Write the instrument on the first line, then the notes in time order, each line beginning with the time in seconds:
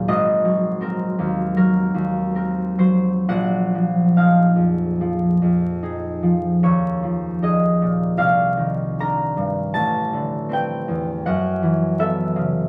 harp
Already playing: F#3 A#3 G#4
0.08 G#1 D#5
0.45 F#3
0.81 C4 A#4
1.19 D#2
1.56 F#3 A#4
1.94 D#2
2.35 C4 A#4
2.78 F#3 C5
3.28 A#1 F#5
3.75 F3
4.17 D#4 G#4 F5
4.56 F2
5.01 F3
5.42 F2
5.83 D#4 G#4
6.23 F3
6.63 D#2 C#5
7.03 F3
7.42 D#4 G#4 D#5
7.82 A#2
8.17 C2 F5
8.57 D#3
8.99 D4 A#4 A#5
9.37 G2
9.74 A1 A5
10.13 D3
10.49 C4 B4
10.53 G5
10.88 E2
11.26 F#2 F#5
11.63 E3
11.99 B3 A4 E5
12.36 C#3